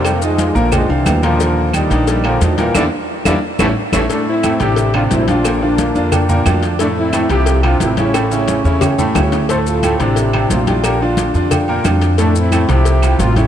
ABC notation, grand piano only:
X:1
M:4/4
L:1/8
Q:1/4=178
K:Dm
V:1 name="Grand piano"
[C,Cc] [_E,_EF]2 [B,,B,B] [D,DF] [D,Df]2 [B,,B,B] | [B,,B,B]2 [D,D_E] [_E,DE]2 [B,,B,B] [D,DE] [B,,B,B] | [B,DE] z2 [B,DE] z [A,^CE] z [A,CE] | [A,,A,A]2 [A,,A,A] [C,CD]2 [C,CD]2 [D,DF] |
[B,,B,B] [D,DF]2 [D,DF]2 [B,,B,B] [D,DF]2 | [A,,A,A]2 [A,,A,A] [C,F,C]2 [C,CF]2 [^C,^CE] | [A,,A,A] [^C,^CE]2 [C,CE]2 [A,,A,A] [C,CE]2 | [A,,A,A]2 [A,,A,A] [C,CD]2 [C,CD]2 [D,DF] |
[B,,B,B] [D,DF]2 [D,DF]2 [B,,B,B] [D,DF]2 | [A,,A,A]2 [A,,A,A] [C,F,C]2 [C,CF]2 [^C,^CE] |]